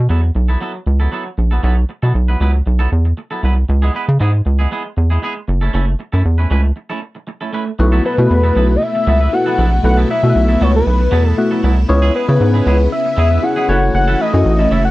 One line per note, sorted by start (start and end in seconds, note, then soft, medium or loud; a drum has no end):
0.09 0.31 E2 loud
0.09 0.25 F#3 medium
0.09 0.23 B3 medium
0.09 0.22 E4 medium
0.09 0.22 A4 medium
0.23 muted clean electric guitar stroke soft
0.35 0.57 B1 medium
0.35 muted clean electric guitar stroke soft
0.48 0.59 F#3 soft
0.48 0.60 B3 soft
0.48 0.60 E4 medium
0.48 0.60 A4 medium
0.61 0.77 F#3 medium
0.61 0.74 B3 medium
0.61 0.74 E4 medium
0.61 0.73 A4 loud
0.74 muted clean electric guitar stroke medium
0.86 1.08 C#2 medium
0.86 muted clean electric guitar stroke soft
1.00 1.10 F#3 soft
1.00 1.11 B3 medium
1.00 1.12 E4 medium
1.00 1.11 A4 medium
1.12 1.28 F#3 medium
1.12 1.26 B3 medium
1.12 1.25 E4 medium
1.12 1.24 A4 loud
1.26 muted clean electric guitar stroke soft
1.38 1.59 A#1 medium
1.38 muted clean electric guitar stroke soft
1.51 1.62 F#3 soft
1.51 1.62 B3 medium
1.51 1.63 E4 medium
1.51 1.63 A4 medium
1.63 1.85 B1 loud
1.63 1.79 F#3 medium
1.63 1.77 B3 medium
1.63 1.77 E4 loud
1.63 1.76 A4 loud
1.77 muted clean electric guitar stroke soft
1.89 muted clean electric guitar stroke soft
2.02 2.13 B2 medium
2.02 2.13 F#3 medium
2.02 2.14 B3 medium
2.02 2.14 E4 medium
2.02 2.14 A4 medium
2.15 2.36 B1 loud
2.28 2.39 F#3 soft
2.28 2.40 B3 medium
2.28 2.40 E4 medium
2.28 2.40 B4 medium
2.40 2.62 C#2 loud
2.40 2.56 F#3 medium
2.40 2.54 B3 medium
2.40 2.53 E4 medium
2.40 2.54 B4 loud
2.54 muted clean electric guitar stroke soft
2.66 2.88 B1 medium
2.66 muted clean electric guitar stroke soft
2.79 2.90 F#3 medium
2.79 2.91 B3 medium
2.79 2.91 E4 medium
2.79 2.92 A4 medium
2.91 3.13 E2 medium
2.91 muted clean electric guitar stroke soft
3.05 muted clean electric guitar stroke soft
3.17 muted clean electric guitar stroke soft
3.31 3.42 F#3 soft
3.31 3.42 B3 medium
3.31 3.43 E4 medium
3.31 3.44 A4 medium
3.43 3.64 C2 medium
3.43 3.56 F#3 medium
3.43 3.56 B3 medium
3.43 3.56 E4 medium
3.43 3.56 B4 medium
3.57 muted clean electric guitar stroke soft
3.69 3.90 C#2 loud
3.69 muted clean electric guitar stroke soft
3.82 3.93 G#3 medium
3.82 3.94 B3 medium
3.82 3.94 E4 medium
3.82 3.96 G#4 medium
3.94 4.07 G#3 medium
3.94 4.07 B3 medium
3.94 4.08 E4 medium
3.94 4.08 B4 medium
4.08 4.18 C#3 loud
4.08 muted clean electric guitar stroke soft
4.20 4.42 G#2 loud
4.20 4.36 G#3 medium
4.20 4.33 B3 medium
4.20 4.33 E4 medium
4.20 4.32 G#4 medium
4.33 muted clean electric guitar stroke soft
4.45 4.67 C#2 medium
4.45 muted clean electric guitar stroke soft
4.59 4.70 G#3 medium
4.59 4.71 B3 medium
4.59 4.71 E4 medium
4.59 4.70 G#4 medium
4.71 4.87 G#3 medium
4.71 4.85 B3 medium
4.71 4.84 E4 medium
4.71 4.84 G#4 medium
4.85 muted clean electric guitar stroke soft
4.97 5.18 E2 medium
4.97 muted clean electric guitar stroke soft
5.10 5.21 G#3 medium
5.10 5.22 B3 soft
5.10 5.22 E4 medium
5.10 5.22 G#4 medium
5.22 5.38 G#3 medium
5.22 5.36 B3 medium
5.22 5.35 E4 medium
5.22 5.35 G#4 medium
5.36 muted clean electric guitar stroke soft
5.48 5.70 F#1 loud
5.48 muted clean electric guitar stroke soft
5.61 5.72 A3 soft
5.61 5.73 C#4 medium
5.61 5.73 E4 medium
5.61 5.73 A4 medium
5.73 5.95 F#1 loud
5.73 5.90 A3 medium
5.73 5.87 C#4 medium
5.73 5.86 E4 medium
5.73 5.86 A4 medium
5.87 muted clean electric guitar stroke soft
5.99 muted clean electric guitar stroke soft
6.12 6.23 F#2 loud
6.12 6.23 A3 soft
6.12 6.24 C#4 medium
6.12 6.24 E4 medium
6.12 6.24 A4 medium
6.24 6.46 E2 medium
6.24 muted clean electric guitar stroke soft
6.38 6.49 A3 soft
6.38 6.49 C#4 soft
6.38 6.50 E4 soft
6.38 6.50 B4 medium
6.50 6.72 C#2 loud
6.50 6.66 A3 medium
6.50 6.64 C#4 medium
6.50 6.64 E4 medium
6.50 6.64 B4 medium
6.64 muted clean electric guitar stroke soft
6.76 muted clean electric guitar stroke soft
6.90 7.01 A3 medium
6.90 7.01 C#4 medium
6.90 7.01 E4 medium
6.90 7.02 A4 medium
7.02 muted clean electric guitar stroke soft
7.15 muted clean electric guitar stroke soft
7.27 muted clean electric guitar stroke soft
7.41 7.51 A3 soft
7.41 7.52 C#4 soft
7.41 7.53 E4 medium
7.41 7.52 A4 soft
7.53 7.69 A3 medium
7.53 7.67 C#4 medium
7.53 7.66 E4 medium
7.53 7.66 B4 medium
7.66 muted clean electric guitar stroke soft
7.79 8.00 B1 loud
7.79 11.85 B2 medium
7.79 8.02 A3 loud
7.79 11.85 A3 medium
7.79 8.02 B3 medium
7.79 13.65 E4 medium
7.79 8.02 E4 medium
7.79 8.02 F#4 medium
7.79 8.02 B4 loud
7.79 muted clean electric guitar stroke soft
7.92 8.03 F#3 medium
7.92 8.03 B3 medium
7.92 8.04 E4 medium
7.92 8.04 A4 medium
8.04 8.17 F#3 medium
8.04 8.17 B3 medium
8.04 8.17 E4 medium
8.04 8.16 A4 medium
8.04 8.77 B4 loud
8.18 8.28 B2 loud
8.18 8.79 A3 medium
8.18 8.79 B3 medium
8.18 8.79 E4 medium
8.18 8.79 F#4 medium
8.18 8.80 B4 medium
8.18 muted clean electric guitar stroke medium
8.30 8.52 E2 loud
8.30 muted clean electric guitar stroke soft
8.43 8.54 F#3 medium
8.43 8.55 B3 medium
8.43 8.55 E4 medium
8.43 8.55 A4 medium
8.55 8.77 B1 medium
8.55 8.71 F#3 medium
8.55 8.69 B3 medium
8.55 8.68 E4 loud
8.55 8.68 A4 loud
8.69 muted clean electric guitar stroke medium
8.76 8.84 D#5 medium
8.81 9.35 E5 loud
8.81 muted clean electric guitar stroke medium
8.95 muted clean electric guitar stroke medium
9.07 9.28 C#2 medium
9.07 9.21 F#3 medium
9.07 9.21 B3 medium
9.07 9.20 E4 medium
9.07 9.20 A4 medium
9.21 9.31 F#3 soft
9.21 9.32 B3 medium
9.21 9.32 E4 medium
9.21 9.32 B4 medium
9.32 9.64 A3 medium
9.32 9.64 B3 medium
9.32 9.64 E4 medium
9.32 9.64 F#4 medium
9.32 9.64 B4 medium
9.32 9.85 F#5 loud
9.46 9.56 F#3 medium
9.46 9.57 B3 medium
9.46 9.58 E4 medium
9.46 9.59 A4 medium
9.58 9.80 A#1 medium
9.58 9.71 F#3 medium
9.58 9.71 B3 medium
9.58 9.71 E4 medium
9.58 9.70 A4 medium
9.72 muted clean electric guitar stroke medium
9.84 10.05 B1 loud
9.84 10.07 A3 medium
9.84 10.07 B3 medium
9.84 10.08 E4 medium
9.84 10.08 F#4 medium
9.84 10.08 B4 loud
9.84 9.96 F#5 loud
9.84 muted clean electric guitar stroke soft
9.97 10.08 F#3 medium
9.97 10.09 B3 medium
9.97 10.09 E4 medium
9.97 10.11 A4 medium
10.09 10.22 F#3 medium
10.09 10.23 B3 medium
10.09 10.22 E4 medium
10.09 10.22 B4 medium
10.09 10.64 E5 loud
10.22 10.33 B2 medium
10.22 10.84 A3 medium
10.22 10.84 B3 medium
10.22 10.84 E4 medium
10.22 10.84 F#4 medium
10.22 10.29 A4 medium
10.22 muted clean electric guitar stroke medium
10.30 10.87 B4 loud
10.34 10.57 B1 loud
10.34 muted clean electric guitar stroke soft
10.48 10.59 F#3 medium
10.48 10.60 B3 medium
10.48 10.60 E4 medium
10.48 10.60 A4 medium
10.60 10.82 C#2 loud
10.60 10.77 F#3 medium
10.60 10.74 B3 medium
10.60 10.74 E4 medium
10.60 10.73 A4 medium
10.60 10.75 C#5 loud
10.74 11.29 B4 medium
10.74 muted clean electric guitar stroke medium
10.86 11.08 B1 loud
10.86 muted clean electric guitar stroke soft
11.00 muted clean electric guitar stroke soft
11.11 11.33 E2 medium
11.11 11.26 F#3 medium
11.11 11.25 B3 medium
11.11 11.24 E4 medium
11.11 11.24 A4 loud
11.25 11.36 F#3 soft
11.25 11.37 B3 medium
11.25 11.37 E4 medium
11.25 11.37 A4 medium
11.29 11.48 A4 medium
11.37 11.69 A3 medium
11.37 11.69 B3 medium
11.37 11.69 E4 medium
11.37 11.69 F#4 medium
11.37 11.69 B4 medium
11.37 muted clean electric guitar stroke soft
11.51 11.62 F#3 medium
11.51 11.62 B3 medium
11.51 11.63 E4 medium
11.51 11.62 A4 medium
11.63 11.85 C2 loud
11.63 11.79 F#3 medium
11.63 11.77 B3 medium
11.63 11.76 E4 loud
11.63 11.75 A4 loud
11.77 muted clean electric guitar stroke soft
11.88 12.11 C#2 loud
11.88 13.67 C#3 medium
11.88 12.12 B3 loud
11.88 13.67 B3 medium
11.88 12.12 C#4 medium
11.88 12.12 E4 medium
11.88 12.12 G#4 medium
11.88 12.12 C#5 loud
11.88 muted clean electric guitar stroke soft
12.02 12.13 G#3 medium
12.02 12.14 B3 medium
12.02 12.14 E4 medium
12.02 12.15 G#4 loud
12.14 12.27 G#3 medium
12.14 12.28 B3 medium
12.14 12.28 E4 medium
12.14 12.27 G#4 medium
12.14 12.88 B4 medium
12.28 12.39 C#3 loud
12.28 12.89 B3 medium
12.28 12.89 C#4 medium
12.28 12.89 E4 medium
12.28 12.89 G#4 medium
12.28 12.89 C#5 medium
12.28 muted clean electric guitar stroke medium
12.40 12.62 G#2 loud
12.40 muted clean electric guitar stroke soft
12.54 12.65 G#3 medium
12.54 12.65 B3 medium
12.54 12.66 E4 medium
12.54 12.65 G#4 medium
12.66 12.88 C#2 loud
12.66 12.82 G#3 loud
12.66 12.79 B3 loud
12.66 12.79 E4 loud
12.66 12.78 G#4 loud
12.79 muted clean electric guitar stroke soft
12.92 13.45 E5 loud
12.92 muted clean electric guitar stroke soft
13.05 muted clean electric guitar stroke medium
13.17 13.39 E2 medium
13.17 13.31 G#3 medium
13.17 13.31 B3 medium
13.17 13.30 E4 medium
13.17 13.30 G#4 loud
13.30 13.41 G#3 medium
13.30 13.42 B3 medium
13.30 13.42 E4 medium
13.30 13.42 B4 medium
13.42 13.68 B3 medium
13.42 13.67 C#4 medium
13.42 13.67 E4 medium
13.42 13.69 G#4 medium
13.42 13.68 C#5 medium
13.42 13.94 F#5 loud
13.42 muted clean electric guitar stroke medium
13.56 13.68 G#3 medium
13.56 13.69 B3 medium
13.56 13.69 E4 medium
13.56 13.70 G#4 medium
13.68 13.90 F#1 loud
13.68 14.91 E3 medium
13.68 14.20 A3 medium
13.68 13.81 A3 medium
13.68 14.91 A3 medium
13.68 14.20 C#4 medium
13.68 13.82 C#4 medium
13.68 14.20 E4 medium
13.68 13.82 E4 medium
13.68 14.20 F#4 medium
13.68 14.91 F#4 medium
13.68 13.81 A4 medium
13.68 14.20 C#5 medium
13.82 muted clean electric guitar stroke soft
13.94 14.15 F#1 loud
13.94 14.22 F#5 loud
13.94 muted clean electric guitar stroke medium
14.08 14.19 A3 medium
14.08 14.19 C#4 medium
14.08 14.20 E4 medium
14.08 14.21 A4 medium
14.20 14.33 A3 medium
14.20 14.33 C#4 medium
14.20 14.33 E4 medium
14.20 14.33 B4 medium
14.20 14.73 D#5 loud
14.33 14.44 F#2 loud
14.33 14.91 A3 medium
14.33 14.91 C#4 medium
14.33 14.91 E4 medium
14.33 14.91 F#4 medium
14.33 14.91 C#5 medium
14.33 muted clean electric guitar stroke medium
14.45 14.67 A1 loud
14.45 muted clean electric guitar stroke soft
14.59 14.69 A3 medium
14.59 14.70 C#4 medium
14.59 14.71 E4 medium
14.59 14.70 A4 medium
14.71 14.91 F#1 loud
14.71 14.87 A3 loud
14.71 14.85 C#4 medium
14.71 14.84 E4 loud
14.71 14.83 A4 loud
14.71 14.84 E5 loud
14.84 14.91 F#5 loud
14.84 muted clean electric guitar stroke soft